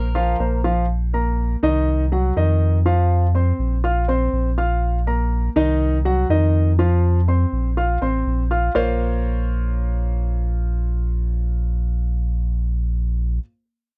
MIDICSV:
0, 0, Header, 1, 4, 480
1, 0, Start_track
1, 0, Key_signature, -5, "minor"
1, 0, Tempo, 491400
1, 866, Time_signature, 4, 2, 24, 8
1, 13646, End_track
2, 0, Start_track
2, 0, Title_t, "Cuban tres"
2, 0, Program_c, 0, 25
2, 0, Note_on_c, 0, 70, 87
2, 586, Note_off_c, 0, 70, 0
2, 13646, End_track
3, 0, Start_track
3, 0, Title_t, "Grand piano"
3, 0, Program_c, 1, 0
3, 147, Note_on_c, 1, 53, 84
3, 147, Note_on_c, 1, 65, 90
3, 152, Note_on_c, 1, 77, 87
3, 343, Note_off_c, 1, 53, 0
3, 344, Note_off_c, 1, 65, 0
3, 347, Note_off_c, 1, 77, 0
3, 388, Note_on_c, 1, 58, 70
3, 390, Note_on_c, 1, 70, 66
3, 393, Note_on_c, 1, 72, 69
3, 584, Note_off_c, 1, 58, 0
3, 585, Note_off_c, 1, 70, 0
3, 587, Note_off_c, 1, 72, 0
3, 627, Note_on_c, 1, 53, 80
3, 628, Note_on_c, 1, 65, 76
3, 632, Note_on_c, 1, 77, 82
3, 823, Note_off_c, 1, 53, 0
3, 824, Note_off_c, 1, 65, 0
3, 826, Note_off_c, 1, 77, 0
3, 1108, Note_on_c, 1, 58, 73
3, 1111, Note_on_c, 1, 70, 74
3, 1115, Note_on_c, 1, 82, 72
3, 1501, Note_off_c, 1, 58, 0
3, 1503, Note_off_c, 1, 70, 0
3, 1505, Note_off_c, 1, 82, 0
3, 1588, Note_on_c, 1, 51, 92
3, 1590, Note_on_c, 1, 63, 91
3, 1595, Note_on_c, 1, 75, 93
3, 1982, Note_off_c, 1, 51, 0
3, 1983, Note_off_c, 1, 63, 0
3, 1986, Note_off_c, 1, 75, 0
3, 2068, Note_on_c, 1, 54, 77
3, 2072, Note_on_c, 1, 66, 76
3, 2075, Note_on_c, 1, 78, 77
3, 2265, Note_off_c, 1, 54, 0
3, 2267, Note_off_c, 1, 66, 0
3, 2269, Note_off_c, 1, 78, 0
3, 2310, Note_on_c, 1, 51, 85
3, 2313, Note_on_c, 1, 63, 73
3, 2316, Note_on_c, 1, 75, 81
3, 2703, Note_off_c, 1, 51, 0
3, 2705, Note_off_c, 1, 63, 0
3, 2706, Note_off_c, 1, 75, 0
3, 2789, Note_on_c, 1, 53, 86
3, 2792, Note_on_c, 1, 65, 82
3, 2794, Note_on_c, 1, 77, 85
3, 3183, Note_off_c, 1, 53, 0
3, 3184, Note_off_c, 1, 65, 0
3, 3185, Note_off_c, 1, 77, 0
3, 3270, Note_on_c, 1, 60, 72
3, 3274, Note_on_c, 1, 72, 74
3, 3277, Note_on_c, 1, 84, 68
3, 3663, Note_off_c, 1, 60, 0
3, 3665, Note_off_c, 1, 72, 0
3, 3667, Note_off_c, 1, 84, 0
3, 3750, Note_on_c, 1, 65, 81
3, 3754, Note_on_c, 1, 77, 75
3, 3757, Note_on_c, 1, 89, 69
3, 3946, Note_off_c, 1, 65, 0
3, 3948, Note_off_c, 1, 77, 0
3, 3950, Note_off_c, 1, 89, 0
3, 3989, Note_on_c, 1, 60, 78
3, 3992, Note_on_c, 1, 72, 78
3, 3995, Note_on_c, 1, 84, 80
3, 4382, Note_off_c, 1, 60, 0
3, 4384, Note_off_c, 1, 72, 0
3, 4386, Note_off_c, 1, 84, 0
3, 4471, Note_on_c, 1, 65, 74
3, 4473, Note_on_c, 1, 77, 82
3, 4476, Note_on_c, 1, 89, 73
3, 4863, Note_off_c, 1, 65, 0
3, 4865, Note_off_c, 1, 77, 0
3, 4866, Note_off_c, 1, 89, 0
3, 4951, Note_on_c, 1, 58, 74
3, 4953, Note_on_c, 1, 70, 77
3, 4956, Note_on_c, 1, 82, 79
3, 5343, Note_off_c, 1, 58, 0
3, 5345, Note_off_c, 1, 70, 0
3, 5346, Note_off_c, 1, 82, 0
3, 5430, Note_on_c, 1, 51, 99
3, 5432, Note_on_c, 1, 63, 98
3, 5436, Note_on_c, 1, 75, 86
3, 5823, Note_off_c, 1, 51, 0
3, 5824, Note_off_c, 1, 63, 0
3, 5827, Note_off_c, 1, 75, 0
3, 5911, Note_on_c, 1, 54, 80
3, 5912, Note_on_c, 1, 66, 82
3, 5917, Note_on_c, 1, 78, 83
3, 6107, Note_off_c, 1, 54, 0
3, 6108, Note_off_c, 1, 66, 0
3, 6110, Note_off_c, 1, 78, 0
3, 6154, Note_on_c, 1, 51, 83
3, 6155, Note_on_c, 1, 63, 77
3, 6158, Note_on_c, 1, 75, 82
3, 6545, Note_off_c, 1, 51, 0
3, 6546, Note_off_c, 1, 63, 0
3, 6548, Note_off_c, 1, 75, 0
3, 6629, Note_on_c, 1, 53, 84
3, 6632, Note_on_c, 1, 65, 83
3, 6636, Note_on_c, 1, 77, 82
3, 7023, Note_off_c, 1, 53, 0
3, 7024, Note_off_c, 1, 65, 0
3, 7026, Note_off_c, 1, 77, 0
3, 7110, Note_on_c, 1, 60, 69
3, 7114, Note_on_c, 1, 72, 70
3, 7117, Note_on_c, 1, 84, 72
3, 7503, Note_off_c, 1, 60, 0
3, 7505, Note_off_c, 1, 72, 0
3, 7507, Note_off_c, 1, 84, 0
3, 7591, Note_on_c, 1, 65, 77
3, 7595, Note_on_c, 1, 77, 76
3, 7597, Note_on_c, 1, 89, 70
3, 7787, Note_off_c, 1, 65, 0
3, 7789, Note_off_c, 1, 77, 0
3, 7790, Note_off_c, 1, 89, 0
3, 7831, Note_on_c, 1, 60, 82
3, 7833, Note_on_c, 1, 72, 81
3, 7837, Note_on_c, 1, 84, 72
3, 8223, Note_off_c, 1, 60, 0
3, 8224, Note_off_c, 1, 72, 0
3, 8227, Note_off_c, 1, 84, 0
3, 8311, Note_on_c, 1, 65, 78
3, 8313, Note_on_c, 1, 77, 73
3, 8315, Note_on_c, 1, 89, 72
3, 8506, Note_off_c, 1, 65, 0
3, 8508, Note_off_c, 1, 77, 0
3, 8509, Note_off_c, 1, 89, 0
3, 8546, Note_on_c, 1, 58, 93
3, 8546, Note_on_c, 1, 65, 89
3, 8549, Note_on_c, 1, 70, 84
3, 8551, Note_on_c, 1, 72, 93
3, 8552, Note_on_c, 1, 73, 86
3, 8554, Note_on_c, 1, 77, 104
3, 13079, Note_off_c, 1, 58, 0
3, 13079, Note_off_c, 1, 65, 0
3, 13082, Note_off_c, 1, 70, 0
3, 13084, Note_off_c, 1, 72, 0
3, 13085, Note_off_c, 1, 73, 0
3, 13088, Note_off_c, 1, 77, 0
3, 13646, End_track
4, 0, Start_track
4, 0, Title_t, "Sub bass"
4, 0, Program_c, 2, 38
4, 0, Note_on_c, 2, 34, 95
4, 346, Note_off_c, 2, 34, 0
4, 383, Note_on_c, 2, 34, 91
4, 1522, Note_off_c, 2, 34, 0
4, 1586, Note_on_c, 2, 36, 94
4, 2268, Note_off_c, 2, 36, 0
4, 2307, Note_on_c, 2, 41, 88
4, 3445, Note_off_c, 2, 41, 0
4, 3504, Note_on_c, 2, 34, 101
4, 4187, Note_off_c, 2, 34, 0
4, 4223, Note_on_c, 2, 34, 98
4, 5363, Note_off_c, 2, 34, 0
4, 5427, Note_on_c, 2, 36, 91
4, 6109, Note_off_c, 2, 36, 0
4, 6143, Note_on_c, 2, 41, 96
4, 7283, Note_off_c, 2, 41, 0
4, 7347, Note_on_c, 2, 34, 94
4, 7794, Note_off_c, 2, 34, 0
4, 7828, Note_on_c, 2, 33, 75
4, 8051, Note_off_c, 2, 33, 0
4, 8069, Note_on_c, 2, 34, 101
4, 8493, Note_off_c, 2, 34, 0
4, 8547, Note_on_c, 2, 34, 89
4, 13080, Note_off_c, 2, 34, 0
4, 13646, End_track
0, 0, End_of_file